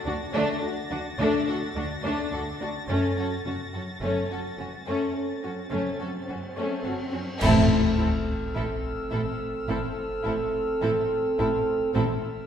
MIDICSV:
0, 0, Header, 1, 12, 480
1, 0, Start_track
1, 0, Key_signature, 0, "minor"
1, 0, Tempo, 1132075
1, 1226, Time_signature, 4, 2, 24, 8
1, 5286, End_track
2, 0, Start_track
2, 0, Title_t, "Violin section"
2, 0, Program_c, 0, 48
2, 0, Note_on_c, 0, 93, 50
2, 0, Note_on_c, 0, 94, 53
2, 2407, Note_off_c, 0, 94, 0
2, 2887, Note_off_c, 0, 93, 0
2, 3144, Note_on_c, 0, 89, 48
2, 3145, Note_on_c, 0, 88, 53
2, 5286, Note_off_c, 0, 88, 0
2, 5286, Note_off_c, 0, 89, 0
2, 5286, End_track
3, 0, Start_track
3, 0, Title_t, "Violin section"
3, 0, Program_c, 1, 48
3, 29, Note_on_c, 1, 66, 56
3, 63, Note_off_c, 1, 66, 0
3, 151, Note_on_c, 1, 62, 72
3, 260, Note_off_c, 1, 62, 0
3, 384, Note_on_c, 1, 66, 50
3, 418, Note_off_c, 1, 66, 0
3, 509, Note_on_c, 1, 62, 59
3, 619, Note_off_c, 1, 62, 0
3, 632, Note_on_c, 1, 69, 50
3, 666, Note_off_c, 1, 69, 0
3, 750, Note_on_c, 1, 66, 49
3, 784, Note_off_c, 1, 66, 0
3, 867, Note_on_c, 1, 62, 59
3, 978, Note_off_c, 1, 62, 0
3, 989, Note_on_c, 1, 69, 38
3, 1023, Note_off_c, 1, 69, 0
3, 1109, Note_on_c, 1, 66, 46
3, 1143, Note_off_c, 1, 66, 0
3, 1229, Note_on_c, 1, 61, 49
3, 1339, Note_off_c, 1, 61, 0
3, 1352, Note_on_c, 1, 69, 29
3, 1386, Note_off_c, 1, 69, 0
3, 1472, Note_on_c, 1, 66, 37
3, 1506, Note_off_c, 1, 66, 0
3, 1587, Note_on_c, 1, 69, 32
3, 1621, Note_off_c, 1, 69, 0
3, 1706, Note_on_c, 1, 61, 46
3, 1818, Note_off_c, 1, 61, 0
3, 1828, Note_on_c, 1, 69, 35
3, 1862, Note_off_c, 1, 69, 0
3, 1949, Note_on_c, 1, 66, 38
3, 1983, Note_off_c, 1, 66, 0
3, 2064, Note_on_c, 1, 61, 55
3, 2176, Note_off_c, 1, 61, 0
3, 2305, Note_on_c, 1, 66, 37
3, 2339, Note_off_c, 1, 66, 0
3, 2421, Note_on_c, 1, 61, 40
3, 2535, Note_off_c, 1, 61, 0
3, 2544, Note_on_c, 1, 69, 36
3, 2578, Note_off_c, 1, 69, 0
3, 2664, Note_on_c, 1, 66, 35
3, 2698, Note_off_c, 1, 66, 0
3, 2786, Note_on_c, 1, 61, 50
3, 2898, Note_off_c, 1, 61, 0
3, 2902, Note_on_c, 1, 69, 35
3, 2936, Note_off_c, 1, 69, 0
3, 3023, Note_on_c, 1, 66, 35
3, 3057, Note_off_c, 1, 66, 0
3, 3142, Note_on_c, 1, 69, 88
3, 3367, Note_off_c, 1, 69, 0
3, 3391, Note_on_c, 1, 69, 49
3, 3425, Note_off_c, 1, 69, 0
3, 3630, Note_on_c, 1, 69, 59
3, 3664, Note_off_c, 1, 69, 0
3, 3868, Note_on_c, 1, 69, 55
3, 3902, Note_off_c, 1, 69, 0
3, 4108, Note_on_c, 1, 69, 59
3, 4142, Note_off_c, 1, 69, 0
3, 4346, Note_on_c, 1, 69, 55
3, 4380, Note_off_c, 1, 69, 0
3, 4588, Note_on_c, 1, 69, 60
3, 4622, Note_off_c, 1, 69, 0
3, 4827, Note_on_c, 1, 69, 57
3, 4861, Note_off_c, 1, 69, 0
3, 5064, Note_on_c, 1, 69, 66
3, 5098, Note_off_c, 1, 69, 0
3, 5286, End_track
4, 0, Start_track
4, 0, Title_t, "French horn section"
4, 0, Program_c, 2, 60
4, 257, Note_on_c, 2, 66, 61
4, 258, Note_on_c, 2, 62, 66
4, 451, Note_off_c, 2, 62, 0
4, 451, Note_off_c, 2, 66, 0
4, 1217, Note_on_c, 2, 61, 44
4, 1219, Note_on_c, 2, 69, 44
4, 1410, Note_off_c, 2, 61, 0
4, 1412, Note_off_c, 2, 69, 0
4, 2180, Note_on_c, 2, 69, 46
4, 2183, Note_on_c, 2, 61, 43
4, 2372, Note_off_c, 2, 69, 0
4, 2374, Note_off_c, 2, 61, 0
4, 3142, Note_on_c, 2, 60, 89
4, 3142, Note_on_c, 2, 69, 78
4, 5047, Note_off_c, 2, 60, 0
4, 5047, Note_off_c, 2, 69, 0
4, 5062, Note_on_c, 2, 69, 86
4, 5063, Note_on_c, 2, 60, 90
4, 5286, Note_off_c, 2, 60, 0
4, 5286, Note_off_c, 2, 69, 0
4, 5286, End_track
5, 0, Start_track
5, 0, Title_t, "Violin section"
5, 0, Program_c, 3, 48
5, 24, Note_on_c, 3, 62, 61
5, 58, Note_off_c, 3, 62, 0
5, 144, Note_on_c, 3, 57, 77
5, 256, Note_off_c, 3, 57, 0
5, 389, Note_on_c, 3, 62, 53
5, 423, Note_off_c, 3, 62, 0
5, 509, Note_on_c, 3, 57, 69
5, 619, Note_off_c, 3, 57, 0
5, 629, Note_on_c, 3, 66, 60
5, 663, Note_off_c, 3, 66, 0
5, 750, Note_on_c, 3, 62, 55
5, 784, Note_off_c, 3, 62, 0
5, 869, Note_on_c, 3, 57, 60
5, 979, Note_off_c, 3, 57, 0
5, 988, Note_on_c, 3, 66, 42
5, 1022, Note_off_c, 3, 66, 0
5, 1111, Note_on_c, 3, 62, 51
5, 1145, Note_off_c, 3, 62, 0
5, 1229, Note_on_c, 3, 57, 58
5, 1339, Note_off_c, 3, 57, 0
5, 1348, Note_on_c, 3, 66, 38
5, 1382, Note_off_c, 3, 66, 0
5, 1468, Note_on_c, 3, 61, 31
5, 1502, Note_off_c, 3, 61, 0
5, 1584, Note_on_c, 3, 66, 31
5, 1618, Note_off_c, 3, 66, 0
5, 1706, Note_on_c, 3, 57, 52
5, 1818, Note_off_c, 3, 57, 0
5, 1826, Note_on_c, 3, 66, 35
5, 1860, Note_off_c, 3, 66, 0
5, 1942, Note_on_c, 3, 61, 40
5, 1975, Note_off_c, 3, 61, 0
5, 2064, Note_on_c, 3, 57, 50
5, 2177, Note_off_c, 3, 57, 0
5, 2304, Note_on_c, 3, 61, 32
5, 2338, Note_off_c, 3, 61, 0
5, 2422, Note_on_c, 3, 57, 53
5, 2536, Note_off_c, 3, 57, 0
5, 2542, Note_on_c, 3, 66, 42
5, 2576, Note_off_c, 3, 66, 0
5, 2663, Note_on_c, 3, 61, 34
5, 2697, Note_off_c, 3, 61, 0
5, 2782, Note_on_c, 3, 57, 51
5, 2896, Note_off_c, 3, 57, 0
5, 2901, Note_on_c, 3, 66, 35
5, 2935, Note_off_c, 3, 66, 0
5, 3017, Note_on_c, 3, 61, 42
5, 3051, Note_off_c, 3, 61, 0
5, 3138, Note_on_c, 3, 64, 84
5, 3365, Note_off_c, 3, 64, 0
5, 3380, Note_on_c, 3, 64, 51
5, 3414, Note_off_c, 3, 64, 0
5, 3628, Note_on_c, 3, 64, 59
5, 3662, Note_off_c, 3, 64, 0
5, 3863, Note_on_c, 3, 64, 56
5, 3897, Note_off_c, 3, 64, 0
5, 4107, Note_on_c, 3, 64, 60
5, 4141, Note_off_c, 3, 64, 0
5, 4344, Note_on_c, 3, 64, 59
5, 4378, Note_off_c, 3, 64, 0
5, 4588, Note_on_c, 3, 64, 61
5, 4622, Note_off_c, 3, 64, 0
5, 4830, Note_on_c, 3, 64, 62
5, 4863, Note_off_c, 3, 64, 0
5, 5070, Note_on_c, 3, 64, 64
5, 5104, Note_off_c, 3, 64, 0
5, 5286, End_track
6, 0, Start_track
6, 0, Title_t, "Viola section"
6, 0, Program_c, 4, 48
6, 32, Note_on_c, 4, 62, 58
6, 65, Note_off_c, 4, 62, 0
6, 145, Note_on_c, 4, 62, 69
6, 257, Note_off_c, 4, 62, 0
6, 387, Note_on_c, 4, 62, 50
6, 421, Note_off_c, 4, 62, 0
6, 508, Note_on_c, 4, 62, 73
6, 619, Note_off_c, 4, 62, 0
6, 628, Note_on_c, 4, 62, 47
6, 662, Note_off_c, 4, 62, 0
6, 747, Note_on_c, 4, 62, 60
6, 781, Note_off_c, 4, 62, 0
6, 865, Note_on_c, 4, 62, 63
6, 977, Note_off_c, 4, 62, 0
6, 983, Note_on_c, 4, 62, 45
6, 1017, Note_off_c, 4, 62, 0
6, 1106, Note_on_c, 4, 62, 48
6, 1140, Note_off_c, 4, 62, 0
6, 1227, Note_on_c, 4, 61, 57
6, 1338, Note_off_c, 4, 61, 0
6, 1352, Note_on_c, 4, 61, 37
6, 1386, Note_off_c, 4, 61, 0
6, 1465, Note_on_c, 4, 61, 35
6, 1499, Note_off_c, 4, 61, 0
6, 1590, Note_on_c, 4, 61, 34
6, 1624, Note_off_c, 4, 61, 0
6, 1706, Note_on_c, 4, 61, 52
6, 1817, Note_off_c, 4, 61, 0
6, 1827, Note_on_c, 4, 61, 34
6, 1861, Note_off_c, 4, 61, 0
6, 1947, Note_on_c, 4, 61, 35
6, 1981, Note_off_c, 4, 61, 0
6, 2070, Note_on_c, 4, 61, 49
6, 2180, Note_off_c, 4, 61, 0
6, 2305, Note_on_c, 4, 61, 40
6, 2339, Note_off_c, 4, 61, 0
6, 2421, Note_on_c, 4, 61, 45
6, 2535, Note_off_c, 4, 61, 0
6, 2546, Note_on_c, 4, 61, 40
6, 2580, Note_off_c, 4, 61, 0
6, 2670, Note_on_c, 4, 61, 37
6, 2704, Note_off_c, 4, 61, 0
6, 2788, Note_on_c, 4, 61, 47
6, 2898, Note_off_c, 4, 61, 0
6, 2908, Note_on_c, 4, 61, 36
6, 2942, Note_off_c, 4, 61, 0
6, 3031, Note_on_c, 4, 61, 36
6, 3065, Note_off_c, 4, 61, 0
6, 3149, Note_on_c, 4, 60, 82
6, 3371, Note_off_c, 4, 60, 0
6, 3390, Note_on_c, 4, 60, 58
6, 3424, Note_off_c, 4, 60, 0
6, 3630, Note_on_c, 4, 60, 53
6, 3664, Note_off_c, 4, 60, 0
6, 3871, Note_on_c, 4, 60, 49
6, 3905, Note_off_c, 4, 60, 0
6, 4112, Note_on_c, 4, 60, 61
6, 4146, Note_off_c, 4, 60, 0
6, 4349, Note_on_c, 4, 60, 52
6, 4382, Note_off_c, 4, 60, 0
6, 4588, Note_on_c, 4, 60, 65
6, 4622, Note_off_c, 4, 60, 0
6, 4829, Note_on_c, 4, 60, 64
6, 4863, Note_off_c, 4, 60, 0
6, 5065, Note_on_c, 4, 60, 73
6, 5099, Note_off_c, 4, 60, 0
6, 5286, End_track
7, 0, Start_track
7, 0, Title_t, "Timpani"
7, 0, Program_c, 5, 47
7, 3149, Note_on_c, 5, 45, 92
7, 3850, Note_off_c, 5, 45, 0
7, 5286, End_track
8, 0, Start_track
8, 0, Title_t, "Cello section"
8, 0, Program_c, 6, 48
8, 28, Note_on_c, 6, 38, 56
8, 62, Note_off_c, 6, 38, 0
8, 145, Note_on_c, 6, 38, 84
8, 179, Note_off_c, 6, 38, 0
8, 384, Note_on_c, 6, 38, 52
8, 418, Note_off_c, 6, 38, 0
8, 505, Note_on_c, 6, 38, 85
8, 539, Note_off_c, 6, 38, 0
8, 625, Note_on_c, 6, 38, 49
8, 659, Note_off_c, 6, 38, 0
8, 748, Note_on_c, 6, 38, 47
8, 782, Note_off_c, 6, 38, 0
8, 864, Note_on_c, 6, 38, 63
8, 898, Note_off_c, 6, 38, 0
8, 983, Note_on_c, 6, 38, 45
8, 1017, Note_off_c, 6, 38, 0
8, 1106, Note_on_c, 6, 38, 43
8, 1140, Note_off_c, 6, 38, 0
8, 1224, Note_on_c, 6, 42, 56
8, 1258, Note_off_c, 6, 42, 0
8, 1344, Note_on_c, 6, 42, 39
8, 1378, Note_off_c, 6, 42, 0
8, 1464, Note_on_c, 6, 42, 36
8, 1498, Note_off_c, 6, 42, 0
8, 1587, Note_on_c, 6, 42, 42
8, 1621, Note_off_c, 6, 42, 0
8, 1708, Note_on_c, 6, 42, 53
8, 1742, Note_off_c, 6, 42, 0
8, 1830, Note_on_c, 6, 42, 34
8, 1864, Note_off_c, 6, 42, 0
8, 1949, Note_on_c, 6, 42, 37
8, 1983, Note_off_c, 6, 42, 0
8, 2069, Note_on_c, 6, 42, 54
8, 2102, Note_off_c, 6, 42, 0
8, 2310, Note_on_c, 6, 42, 36
8, 2344, Note_off_c, 6, 42, 0
8, 2428, Note_on_c, 6, 42, 55
8, 2462, Note_off_c, 6, 42, 0
8, 2548, Note_on_c, 6, 42, 37
8, 2582, Note_off_c, 6, 42, 0
8, 2667, Note_on_c, 6, 42, 35
8, 2701, Note_off_c, 6, 42, 0
8, 2784, Note_on_c, 6, 42, 44
8, 2818, Note_off_c, 6, 42, 0
8, 2905, Note_on_c, 6, 42, 36
8, 2938, Note_off_c, 6, 42, 0
8, 3027, Note_on_c, 6, 42, 31
8, 3061, Note_off_c, 6, 42, 0
8, 3147, Note_on_c, 6, 45, 88
8, 3370, Note_off_c, 6, 45, 0
8, 3387, Note_on_c, 6, 45, 57
8, 3421, Note_off_c, 6, 45, 0
8, 3629, Note_on_c, 6, 45, 65
8, 3663, Note_off_c, 6, 45, 0
8, 3869, Note_on_c, 6, 45, 69
8, 3903, Note_off_c, 6, 45, 0
8, 4107, Note_on_c, 6, 45, 68
8, 4141, Note_off_c, 6, 45, 0
8, 4349, Note_on_c, 6, 45, 69
8, 4383, Note_off_c, 6, 45, 0
8, 4590, Note_on_c, 6, 45, 68
8, 4624, Note_off_c, 6, 45, 0
8, 4830, Note_on_c, 6, 45, 72
8, 4864, Note_off_c, 6, 45, 0
8, 5067, Note_on_c, 6, 45, 73
8, 5101, Note_off_c, 6, 45, 0
8, 5286, End_track
9, 0, Start_track
9, 0, Title_t, "Double bass section"
9, 0, Program_c, 7, 48
9, 22, Note_on_c, 7, 38, 59
9, 56, Note_off_c, 7, 38, 0
9, 500, Note_on_c, 7, 38, 74
9, 534, Note_off_c, 7, 38, 0
9, 741, Note_on_c, 7, 38, 48
9, 775, Note_off_c, 7, 38, 0
9, 983, Note_on_c, 7, 38, 43
9, 1017, Note_off_c, 7, 38, 0
9, 1220, Note_on_c, 7, 30, 63
9, 1254, Note_off_c, 7, 30, 0
9, 1461, Note_on_c, 7, 30, 37
9, 1495, Note_off_c, 7, 30, 0
9, 1700, Note_on_c, 7, 30, 51
9, 1734, Note_off_c, 7, 30, 0
9, 1942, Note_on_c, 7, 30, 39
9, 1976, Note_off_c, 7, 30, 0
9, 2422, Note_on_c, 7, 30, 51
9, 2456, Note_off_c, 7, 30, 0
9, 2665, Note_on_c, 7, 30, 35
9, 2699, Note_off_c, 7, 30, 0
9, 2905, Note_on_c, 7, 30, 40
9, 2939, Note_off_c, 7, 30, 0
9, 3146, Note_on_c, 7, 33, 95
9, 3369, Note_off_c, 7, 33, 0
9, 3385, Note_on_c, 7, 33, 62
9, 3419, Note_off_c, 7, 33, 0
9, 3626, Note_on_c, 7, 33, 58
9, 3660, Note_off_c, 7, 33, 0
9, 3864, Note_on_c, 7, 33, 68
9, 3898, Note_off_c, 7, 33, 0
9, 4104, Note_on_c, 7, 33, 68
9, 4138, Note_off_c, 7, 33, 0
9, 4346, Note_on_c, 7, 33, 68
9, 4380, Note_off_c, 7, 33, 0
9, 4587, Note_on_c, 7, 33, 82
9, 4621, Note_off_c, 7, 33, 0
9, 4826, Note_on_c, 7, 33, 72
9, 4860, Note_off_c, 7, 33, 0
9, 5064, Note_on_c, 7, 33, 87
9, 5098, Note_off_c, 7, 33, 0
9, 5286, End_track
10, 0, Start_track
10, 0, Title_t, "Sub drop"
10, 0, Program_c, 8, 103
10, 3147, Note_on_c, 8, 60, 63
10, 5066, Note_off_c, 8, 60, 0
10, 5286, End_track
11, 0, Start_track
11, 0, Title_t, "Swell"
11, 0, Program_c, 10, 103
11, 1223, Note_on_c, 10, 60, 44
11, 3145, Note_off_c, 10, 60, 0
11, 5286, End_track
12, 0, Start_track
12, 0, Title_t, "Drums"
12, 3143, Note_on_c, 9, 35, 77
12, 3143, Note_on_c, 9, 49, 77
12, 3186, Note_off_c, 9, 35, 0
12, 3186, Note_off_c, 9, 49, 0
12, 5286, End_track
0, 0, End_of_file